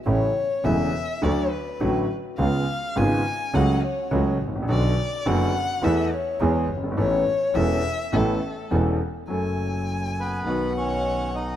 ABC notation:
X:1
M:4/4
L:1/16
Q:1/4=104
K:A
V:1 name="Violin"
c4 e4 d2 B4 z2 | ^e4 g4 f2 c4 z2 | d4 f4 e2 c4 z2 | c4 e4 A4 z4 |
[K:F#m] g8 f8 |]
V:2 name="Bandoneon"
z16 | z16 | z16 | z16 |
[K:F#m] z6 [B,B]4 [Cc]4 [^D^d]2 |]
V:3 name="Grand piano" clef=bass
[A,,,A,,C,E,A,E]2 z2 [E,,,E,,C,E,A,E]2 z2 [D,,D,F,A,F]2 z2 [A,,,A,,D,F,A,F]2 z2 | [C,,C,G,B,^E]2 z2 [G,,,G,,C,G,B,E]2 z2 [C,,C,F,A,F]2 z2 [C,,C,F,A,F]2 z/2 G,,,/2 A,,,/2 _B,,,/2 | [B,,,B,,D,F,B,F]2 z2 [F,,,F,,D,F,B,F]2 z2 [E,,E,A,B,A]2 z2 [E,,E,G,B,G]2 z/2 F,,,/2 =G,,,/2 ^G,,,/2 | [A,,,A,,E,B,CA]2 z2 [E,,,E,,E,B,CA]2 z2 [A,,,A,,E,B,CA]2 z2 [E,,,E,,E,B,CA]2 z2 |
[K:F#m] [F,,F,A,CA]8 [B,,,B,,^D,F,B,F]8 |]
V:4 name="Double bass" clef=bass
A,,,2 z2 E,,,2 z2 D,,2 z2 A,,,2 z2 | C,,2 z2 G,,,2 z2 C,,2 z2 C,,2 A,,,2 | B,,,2 z2 F,,,2 z2 E,,2 z2 E,,2 =G,,,2 | A,,,2 z2 E,,,2 z2 A,,,2 z2 E,,,2 z2 |
[K:F#m] F,,,8 B,,,8 |]